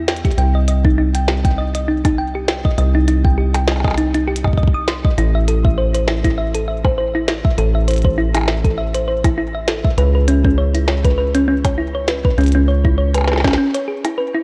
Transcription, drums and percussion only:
0.08 snare, closed hi-hat
0.16 closed hi-hat
0.25 kick, closed hi-hat
0.31 closed hi-hat
0.38 closed hi-hat
0.68 closed hi-hat
0.85 kick
1.15 closed hi-hat
1.28 snare, percussion blips
1.45 kick, closed hi-hat
1.75 closed hi-hat
2.05 kick, closed hi-hat, percussion blips
2.48 snare, closed hi-hat
2.65 kick
2.78 closed hi-hat
3.08 closed hi-hat
3.25 kick
3.55 closed hi-hat, percussion blips
3.68 snare, percussion blips
3.72 percussion blips
3.76 percussion blips
3.80 percussion blips
3.85 kick, percussion blips
3.88 percussion blips
3.91 percussion blips
3.95 closed hi-hat, percussion blips
4.15 closed hi-hat
4.36 closed hi-hat
4.45 kick, percussion blips
4.48 kick
4.53 kick
4.58 kick
4.63 kick
4.68 kick
4.88 snare, closed hi-hat
5.05 kick
5.18 closed hi-hat
5.48 closed hi-hat
5.65 kick
5.95 closed hi-hat
6.08 snare, percussion blips
6.25 kick, closed hi-hat
6.55 closed hi-hat
6.85 kick, percussion blips
7.28 snare, closed hi-hat
7.45 kick
7.58 closed hi-hat
7.88 closed hi-hat
7.91 closed hi-hat
7.93 closed hi-hat
7.96 closed hi-hat
7.98 closed hi-hat
8.02 kick, closed hi-hat
8.35 closed hi-hat, percussion blips
8.37 percussion blips
8.41 percussion blips
8.43 percussion blips
8.46 snare, percussion blips
8.48 percussion blips
8.64 kick, closed hi-hat
8.95 closed hi-hat
9.24 kick, closed hi-hat, percussion blips
9.68 snare, closed hi-hat
9.84 kick
9.98 closed hi-hat
10.28 closed hi-hat
10.44 kick
10.75 closed hi-hat
10.88 snare, percussion blips
11.04 kick, closed hi-hat
11.35 closed hi-hat
11.64 kick, closed hi-hat, percussion blips
12.08 snare, closed hi-hat
12.24 kick
12.38 closed hi-hat
12.40 closed hi-hat
12.43 closed hi-hat
12.46 closed hi-hat
12.48 closed hi-hat
12.52 closed hi-hat
12.84 kick
13.14 closed hi-hat, percussion blips
13.18 percussion blips
13.21 percussion blips
13.24 snare, percussion blips
13.28 percussion blips
13.32 snare, percussion blips
13.36 snare, percussion blips
13.40 percussion blips
13.44 kick, snare, percussion blips
13.48 snare, percussion blips
13.51 snare, percussion blips
13.54 percussion blips
13.74 closed hi-hat
14.05 closed hi-hat, percussion blips

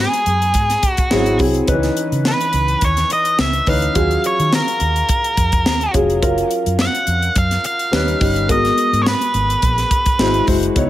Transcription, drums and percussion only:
0.14 closed hi-hat
0.26 closed hi-hat
0.42 closed hi-hat
0.54 kick, closed hi-hat
0.70 snare, closed hi-hat
0.83 kick, closed hi-hat
0.97 kick, closed hi-hat
1.11 snare
1.26 closed hi-hat
1.39 kick, open hi-hat
1.54 closed hi-hat
1.68 kick, closed hi-hat
1.83 snare, closed hi-hat
1.97 closed hi-hat
2.12 closed hi-hat
2.25 snare
2.41 closed hi-hat
2.53 closed hi-hat
2.68 closed hi-hat
2.81 kick, closed hi-hat
2.97 snare, closed hi-hat
3.10 closed hi-hat
3.25 closed hi-hat
3.39 snare
3.53 closed hi-hat
3.66 kick, open hi-hat
3.82 closed hi-hat
3.95 kick, closed hi-hat
4.11 closed hi-hat
4.24 closed hi-hat
4.40 closed hi-hat
4.53 snare
4.68 closed hi-hat
4.80 closed hi-hat
4.96 closed hi-hat
5.09 kick, closed hi-hat
5.24 closed hi-hat
5.37 kick, closed hi-hat
5.52 kick, closed hi-hat
5.66 snare
5.81 closed hi-hat
5.94 kick, closed hi-hat
6.10 closed hi-hat
6.22 kick, closed hi-hat
6.38 closed hi-hat
6.51 closed hi-hat
6.66 closed hi-hat
6.79 snare
6.95 closed hi-hat
7.07 closed hi-hat
7.22 closed hi-hat
7.36 kick, closed hi-hat
7.51 snare, closed hi-hat
7.64 closed hi-hat
7.79 closed hi-hat
7.93 snare
8.08 closed hi-hat
8.21 kick, open hi-hat
8.36 closed hi-hat
8.49 kick, closed hi-hat
8.65 snare, closed hi-hat
8.78 closed hi-hat
8.93 closed hi-hat
9.06 snare
9.21 closed hi-hat
9.34 closed hi-hat
9.50 closed hi-hat
9.62 kick, closed hi-hat
9.78 snare, closed hi-hat
9.91 kick, closed hi-hat
10.06 kick, closed hi-hat
10.19 snare
10.34 closed hi-hat
10.47 kick, open hi-hat
10.63 closed hi-hat
10.76 kick, closed hi-hat

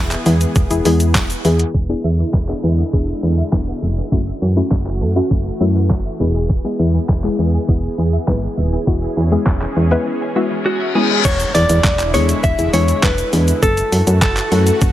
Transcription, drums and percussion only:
0.11 clap, closed hi-hat, shaker
0.26 open hi-hat, shaker
0.41 closed hi-hat, shaker
0.55 kick, shaker
0.71 closed hi-hat, shaker
0.85 open hi-hat, shaker
1.00 closed hi-hat, shaker
1.15 kick, snare, clap, tambourine, shaker
1.30 closed hi-hat, shaker
1.45 open hi-hat, shaker
1.59 closed hi-hat, shaker
1.74 kick
2.33 kick, snare, clap
2.48 clap
2.93 kick
3.52 kick, snare, clap
4.12 kick
4.71 kick, snare, clap
4.86 clap
5.31 kick
5.90 kick, snare, clap
6.50 kick, shaker
6.64 closed hi-hat, shaker
6.80 shaker
6.94 closed hi-hat, shaker
7.09 kick, snare, clap
7.24 clap, closed hi-hat
7.39 shaker
7.54 closed hi-hat, shaker
7.68 kick, shaker
7.83 closed hi-hat, shaker
7.98 shaker
8.13 closed hi-hat, shaker
8.27 kick, snare, clap
8.43 closed hi-hat
8.58 shaker
8.72 closed hi-hat, shaker
8.87 kick, shaker
9.02 closed hi-hat, shaker
9.17 shaker
9.32 closed hi-hat, shaker
9.46 kick, snare, clap, shaker
9.61 clap, closed hi-hat, shaker
9.76 shaker
9.91 closed hi-hat, shaker
11.25 kick, crash, shaker
11.40 closed hi-hat, shaker
11.55 open hi-hat, shaker
11.69 closed hi-hat, shaker
11.84 kick, snare, clap, shaker
11.99 clap, closed hi-hat, shaker
12.14 open hi-hat, shaker
12.29 closed hi-hat, shaker
12.44 kick, shaker
12.59 closed hi-hat, shaker
12.73 open hi-hat, shaker
12.88 closed hi-hat, shaker
13.03 kick, snare, clap, shaker
13.18 closed hi-hat, shaker
13.33 open hi-hat, shaker
13.48 closed hi-hat, shaker
13.63 kick, shaker
13.77 closed hi-hat, shaker
13.92 open hi-hat, shaker
14.07 closed hi-hat, shaker
14.22 kick, snare, clap, shaker
14.37 clap, closed hi-hat, shaker
14.52 open hi-hat, shaker
14.67 closed hi-hat, shaker
14.81 kick, shaker

